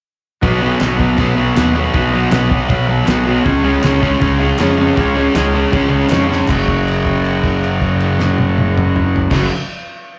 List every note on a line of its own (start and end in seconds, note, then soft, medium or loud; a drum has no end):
0.41 0.73 B1 medium
0.41 0.61 B2 medium
0.41 0.61 F#3 loud
0.41 0.62 B3 loud
0.41 0.72 F#4 loud
0.41 0.73 B4 loud
0.41 0.73 D#5 loud
0.41 kick loud
0.41 crash medium
0.61 0.80 B2 medium
0.61 0.82 F#3 medium
0.61 0.82 B3 medium
0.80 1.11 B1 medium
0.80 0.97 B2 medium
0.80 0.97 F#3 medium
0.80 0.98 B3 medium
0.80 1.11 F#4 medium
0.80 1.11 B4 medium
0.80 1.11 D#5 loud
0.80 snare loud
0.80 clap medium
0.80 crash medium
0.97 1.17 B2 loud
0.97 1.18 F#3 medium
0.97 1.18 B3 loud
0.97 kick medium
1.18 1.48 B1 medium
1.18 1.34 B2 medium
1.18 1.36 F#3 medium
1.18 1.36 B3 medium
1.18 1.50 F#4 medium
1.18 1.49 B4 medium
1.18 1.49 D#5 medium
1.18 kick loud
1.18 crash medium
1.36 1.53 B2 loud
1.36 1.54 F#3 loud
1.36 1.55 B3 loud
1.54 1.86 D#2 medium
1.54 1.74 B2 medium
1.54 1.75 F#3 medium
1.54 1.75 B3 loud
1.54 1.86 F#4 medium
1.54 1.86 B4 medium
1.54 1.87 D#5 loud
1.54 snare loud
1.54 clap loud
1.54 crash medium
1.75 1.94 B2 medium
1.75 1.95 F#3 medium
1.75 1.95 B3 medium
1.93 2.25 B1 medium
1.93 2.12 B2 medium
1.93 2.12 F#3 loud
1.93 2.13 B3 medium
1.93 2.25 F#4 loud
1.93 2.25 B4 loud
1.93 2.25 D#5 loud
1.93 kick loud
1.93 crash medium
2.13 2.30 B2 medium
2.13 2.30 F#3 medium
2.13 2.31 B3 medium
2.31 2.62 B1 medium
2.31 2.49 B2 medium
2.31 2.50 F#3 medium
2.31 2.51 B3 medium
2.31 2.63 F#4 medium
2.31 2.63 B4 medium
2.31 2.63 D#5 loud
2.31 snare loud
2.31 clap loud
2.31 crash medium
2.50 2.67 B2 medium
2.50 2.68 F#3 loud
2.50 2.68 B3 loud
2.50 kick medium
2.68 3.00 B1 loud
2.68 2.86 B2 medium
2.68 2.88 F#3 medium
2.68 2.88 B3 loud
2.68 3.01 F#4 medium
2.68 3.01 B4 medium
2.68 3.01 F5 medium
2.68 kick loud
2.68 crash medium
2.88 3.04 B2 loud
2.88 3.06 F#3 loud
2.88 3.06 B3 medium
3.06 3.38 B1 medium
3.06 3.24 B2 medium
3.06 3.26 F#3 loud
3.06 3.26 B3 medium
3.06 3.39 D#5 loud
3.06 snare loud
3.06 clap medium
3.06 crash medium
3.10 3.39 F#4 medium
3.10 3.39 B4 medium
3.25 3.44 B2 medium
3.25 3.45 F#3 medium
3.25 3.45 B3 loud
3.44 3.75 C#2 medium
3.44 3.63 C#3 medium
3.44 3.64 G#3 loud
3.44 3.64 C#4 medium
3.44 3.75 F4 loud
3.44 3.75 G#4 loud
3.44 3.76 C#5 loud
3.44 kick loud
3.44 crash medium
3.63 3.82 C#3 medium
3.63 3.83 G#3 medium
3.63 3.84 C#4 medium
3.83 4.14 C#2 medium
3.83 4.01 C#3 medium
3.83 4.02 G#3 medium
3.83 4.02 C#4 medium
3.83 4.15 F4 medium
3.83 4.14 G#4 medium
3.83 4.14 C#5 loud
3.83 snare loud
3.83 clap medium
3.83 crash medium
4.01 4.19 C#3 loud
4.01 4.20 G#3 loud
4.01 4.21 C#4 loud
4.01 kick medium
4.20 4.51 C#2 medium
4.20 4.37 C#3 loud
4.20 4.38 G#3 loud
4.20 4.39 C#4 medium
4.20 4.51 F4 medium
4.20 4.51 G#4 medium
4.20 4.52 C#5 loud
4.20 kick loud
4.20 crash medium
4.38 4.57 C#3 medium
4.38 4.57 G#3 loud
4.38 4.59 C#4 loud
4.58 4.90 F2 medium
4.58 4.76 C#3 medium
4.58 4.77 G#3 medium
4.58 4.78 C#4 loud
4.58 4.89 F4 medium
4.58 4.90 G#4 medium
4.58 4.90 C#5 loud
4.58 snare loud
4.58 clap medium
4.58 crash medium
4.78 4.95 C#3 medium
4.78 4.96 G#3 medium
4.78 4.96 C#4 loud
4.96 5.27 C#2 medium
4.96 5.14 C#3 medium
4.96 5.15 G#3 loud
4.96 5.15 C#4 loud
4.96 5.28 F4 loud
4.96 5.28 G#4 loud
4.96 5.28 C#5 loud
4.96 kick loud
4.96 crash medium
5.15 5.33 C#3 medium
5.15 5.34 G#3 medium
5.15 5.34 C#4 medium
5.34 5.64 C#2 medium
5.34 5.52 C#3 medium
5.34 5.53 G#3 medium
5.34 5.54 C#4 loud
5.34 5.66 F4 medium
5.34 5.66 G#4 medium
5.34 snare loud
5.34 clap medium
5.34 crash medium
5.38 5.66 D#5 loud
5.54 5.70 C#3 loud
5.54 5.71 G#3 loud
5.54 5.72 C#4 loud
5.71 6.03 C#2 loud
5.71 5.88 C#3 medium
5.71 5.89 G#3 loud
5.71 5.89 C#4 medium
5.71 6.03 F4 medium
5.71 kick loud
5.71 crash medium
5.75 6.04 G#4 medium
5.75 6.04 C#5 medium
5.89 6.07 C#3 loud
5.89 6.08 G#3 loud
5.89 6.08 C#4 loud
6.08 6.40 F2 medium
6.08 6.26 C#3 medium
6.08 6.26 G#3 medium
6.08 6.27 C#4 medium
6.08 6.41 F4 medium
6.08 6.41 C#5 medium
6.08 clap medium
6.08 crash medium
6.12 6.41 G#4 medium
6.12 snare loud
6.27 6.46 C#3 medium
6.27 6.46 G#3 loud
6.27 6.47 C#4 medium
6.32 snare medium
6.47 9.22 F#1 medium
6.47 9.30 F#2 medium
6.47 9.32 C#3 medium
6.47 9.34 F#3 loud
6.47 9.23 F#4 medium
6.47 9.23 A#4 medium
6.47 9.22 C#5 medium
6.47 kick loud
6.47 clap medium
6.47 crash medium
6.68 kick medium
6.68 crash medium
6.88 crash soft
7.06 kick medium
7.06 crash soft
7.25 crash soft
7.44 kick medium
7.44 crash soft
7.64 crash medium
7.81 kick medium
7.81 crash medium
8.00 crash medium
8.20 snare loud
8.38 high tom medium
8.58 high tom medium
8.78 mid tom loud
8.96 mid tom loud
9.16 floor tom loud
9.30 9.47 F#1 medium
9.30 9.48 F#2 medium
9.30 9.49 C#3 loud
9.30 9.47 F#4 medium
9.30 9.47 A#4 medium
9.30 9.47 C#5 medium
9.30 kick loud
9.30 snare loud
9.30 crash loud
9.35 9.50 F#3 loud